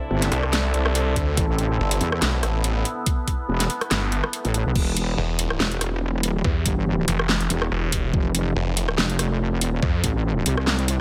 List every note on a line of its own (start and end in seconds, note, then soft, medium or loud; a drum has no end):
0.00 1.34 C3 medium
0.00 1.33 C4 medium
0.00 1.34 D4 medium
0.00 1.34 E4 medium
0.00 4.71 A4 medium
0.11 0.30 G1 medium
0.22 snare soft
0.22 closed hi-hat medium
0.32 0.73 C2 loud
0.32 closed hi-hat medium
0.43 cross-stick medium
0.53 snare loud
0.53 closed hi-hat medium
0.74 1.15 C2 medium
0.74 closed hi-hat medium
0.86 cross-stick medium
0.95 closed hi-hat medium
1.16 1.36 D2 loud
1.16 kick medium
1.16 closed hi-hat medium
1.37 1.78 A1 loud
1.37 4.72 B3 medium
1.37 4.72 E4 medium
1.37 kick loud
1.37 closed hi-hat medium
1.59 closed hi-hat soft
1.80 1.99 G1 loud
1.91 closed hi-hat medium
2.01 2.20 E2 loud
2.01 closed hi-hat medium
2.12 cross-stick medium
2.22 2.42 B1 loud
2.22 snare loud
2.22 closed hi-hat medium
2.43 2.84 A1 loud
2.43 cross-stick medium
2.43 closed hi-hat medium
2.64 closed hi-hat medium
2.85 closed hi-hat medium
3.06 kick loud
3.06 closed hi-hat medium
3.28 kick medium
3.28 closed hi-hat medium
3.49 3.68 E1 loud
3.60 snare soft
3.60 closed hi-hat medium
3.70 closed hi-hat medium
3.81 cross-stick medium
3.81 closed hi-hat soft
3.91 4.22 G1 loud
3.91 snare loud
3.91 closed hi-hat medium
4.12 closed hi-hat medium
4.24 cross-stick medium
4.33 closed hi-hat medium
4.45 4.64 A1 loud
4.45 closed hi-hat soft
4.54 closed hi-hat medium
4.66 4.74 B1 loud
4.75 5.16 E1 loud
4.75 8.10 E3 medium
4.75 8.10 E4 medium
4.75 8.10 G4 medium
4.75 8.10 B4 medium
4.75 8.10 B5 medium
4.75 kick loud
4.75 crash loud
4.97 closed hi-hat medium
5.18 5.58 E1 medium
5.39 closed hi-hat medium
5.50 cross-stick medium
5.60 6.19 E1 medium
5.60 snare loud
5.72 closed hi-hat soft
5.81 cross-stick medium
5.81 closed hi-hat medium
6.19 6.43 D#1 medium
6.23 closed hi-hat medium
6.44 6.64 E2 loud
6.44 kick loud
6.66 7.06 G1 loud
6.66 kick medium
6.66 closed hi-hat medium
7.08 7.49 F1 loud
7.08 closed hi-hat medium
7.19 cross-stick medium
7.29 snare loud
7.41 closed hi-hat soft
7.50 7.70 E1 loud
7.50 closed hi-hat medium
7.62 cross-stick medium
7.71 7.91 E1 loud
7.92 8.12 E1 loud
7.92 kick medium
7.92 closed hi-hat medium
8.14 8.54 F1 loud
8.14 11.01 C4 medium
8.14 11.01 F4 medium
8.14 11.01 A4 medium
8.14 kick loud
8.35 closed hi-hat medium
8.56 8.96 F1 loud
8.77 closed hi-hat medium
8.88 cross-stick medium
8.98 9.57 F1 medium
8.98 snare loud
9.10 closed hi-hat soft
9.19 cross-stick medium
9.19 closed hi-hat medium
9.57 9.81 E1 medium
9.61 closed hi-hat medium
9.83 10.02 F2 loud
9.83 kick loud
10.04 10.44 A1 loud
10.04 kick medium
10.04 closed hi-hat medium
10.46 11.01 C2 loud
10.46 closed hi-hat medium
10.57 cross-stick medium
10.67 snare loud
10.79 closed hi-hat soft
10.88 closed hi-hat medium